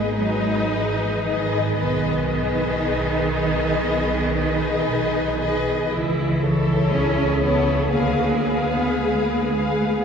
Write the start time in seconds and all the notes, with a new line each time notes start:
Already playing: G#1 G#3 D#4 G#4 B4 D#5
0.17 F#3 G#4 B4 D#5
0.70 G#1 E3
1.24 D#3 G#4 B4 D#5
1.77 B1 B3 G#4 B4 D#5
2.30 G#4 B4 D#5
2.81 B1 D#4
3.34 G#4 B4 D#5
3.86 B1 B3
4.38 D#4 G#4 B4 D#5
4.89 B1 D#4
5.40 G#4 B4 D#5
5.90 C#2 E3 E4
6.41 E4 A4 C#5
6.92 C#2 C#4 G#4
7.41 B3 E4 A4 C#5
7.91 D2 A#3 G#4 B4 F5
8.44 G#4 B4 F5
8.71 B3
8.97 D2 G#3
9.26 A#3
9.53 G#3 G#4 B4 F5